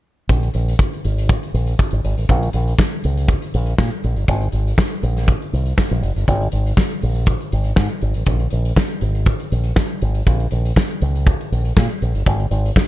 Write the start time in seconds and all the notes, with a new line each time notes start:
0.29 A#1, kick, closed hi-hat
0.43 closed hi-hat
0.54 A#1, closed hi-hat
0.68 closed hi-hat
0.79 kick, closed hi-hat
0.93 closed hi-hat
1.04 G#1, closed hi-hat
1.18 closed hi-hat
1.29 kick, closed hi-hat
1.43 closed hi-hat
1.54 A#1, closed hi-hat
1.67 closed hi-hat
1.79 kick, closed hi-hat
1.91 G#1, closed hi-hat
2.04 G#1, closed hi-hat
2.18 A1, closed hi-hat
2.29 A#1, kick, closed hi-hat
2.43 closed hi-hat
2.53 A#1, closed hi-hat
2.68 closed hi-hat
2.79 kick, snare
2.93 closed hi-hat
3.04 C#2, closed hi-hat
3.17 closed hi-hat
3.28 kick, closed hi-hat
3.42 closed hi-hat
3.54 A#1, closed hi-hat
3.66 closed hi-hat
3.78 A#2, kick, snare
3.90 closed hi-hat
4.04 A#1, closed hi-hat
4.16 G1, closed hi-hat
4.28 G#1, kick, closed hi-hat
4.42 closed hi-hat
4.52 G#1, closed hi-hat
4.67 closed hi-hat
4.78 kick, snare
4.92 closed hi-hat
5.03 A#1, closed hi-hat
5.17 snare, closed hi-hat
5.28 kick, closed hi-hat
5.42 closed hi-hat
5.53 C2, closed hi-hat
5.66 closed hi-hat
5.78 kick, snare
5.90 A#1, closed hi-hat
6.02 F#1, closed hi-hat
6.16 G1, closed hi-hat
6.28 G#1, kick, closed hi-hat
6.42 closed hi-hat
6.52 G#1, closed hi-hat
6.66 closed hi-hat
6.77 kick, snare
6.91 closed hi-hat
7.02 A#1, open hi-hat
7.16 closed hi-hat
7.26 kick, closed hi-hat
7.41 closed hi-hat
7.52 G#1, closed hi-hat
7.64 closed hi-hat
7.76 G#2, kick, snare
7.88 closed hi-hat
8.02 G#1, closed hi-hat
8.14 A1, closed hi-hat
8.26 A#1, kick, closed hi-hat
8.40 closed hi-hat
8.51 A#1, closed hi-hat
8.65 closed hi-hat
8.76 kick, snare
8.91 closed hi-hat
9.01 G#1, closed hi-hat
9.15 closed hi-hat
9.26 kick, closed hi-hat
9.40 closed hi-hat
9.52 A#1, closed hi-hat
9.64 closed hi-hat
9.76 kick, snare
9.88 closed hi-hat
10.02 G#1, closed hi-hat
10.15 closed hi-hat
10.27 A#1, kick, closed hi-hat
10.40 closed hi-hat
10.51 A#1, closed hi-hat
10.65 closed hi-hat
10.76 kick, snare
10.91 closed hi-hat
11.02 C#2, closed hi-hat
11.15 closed hi-hat
11.27 kick, closed hi-hat
11.41 closed hi-hat
11.52 A#1, closed hi-hat
11.65 closed hi-hat
11.77 A#2, kick, snare
11.89 closed hi-hat
12.02 A#1, closed hi-hat
12.14 G1, closed hi-hat
12.26 G#1, kick, closed hi-hat
12.40 closed hi-hat
12.51 G#1, closed hi-hat
12.66 closed hi-hat
12.76 kick, snare